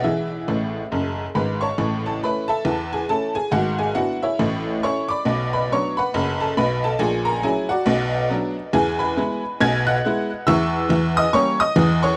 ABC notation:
X:1
M:4/4
L:1/8
Q:"Swing" 1/4=138
K:E
V:1 name="Honky-tonk piano"
[Ge]6 [Bb] [cac']- | [K:A] [cac'] [Aa] [Bb] [Aea]2 [Gg] [Aa] [Gg] | [Ff] [Gg] [Ff] [Ece]2 z [cc'] [dbd']- | [dbd'] [Bb] [cc'] [Bfb]2 [Aa] [Bb] [Aa] |
[Gg] [^A^a] [Gg] [Fdf]2 z3 | [K:E] [Gg] [Bgb]3 [gg'] [ff']3 | [ec'e']3 [dd'] [cc'] [dd']2 [cc'] |]
V:2 name="Honky-tonk piano" clef=bass
E,2 [A,,,A,,]2 [F,,,F,,]2 [G,,,G,,]2 | [K:A] [A,,,A,,]2 [A,CE]2 [E,,E,]2 [A,CE]2 | [G,,,G,,]2 [B,DE]2 [A,,,A,,]2 [A,CE]2 | [B,,,B,,]2 [F,B,D]2 [F,,,F,,]2 [B,,,B,,]2 |
[^A,,,^A,,]2 [F,CE]2 [B,,,B,,]2 [F,B,D]2 | [K:E] [E,,E,]2 [G,B,E]2 [B,,,B,,]2 [G,B,E]2 | [E,,E,]2 [E,,E,]2 [=G,_B,C]2 [E,,E,]2 |]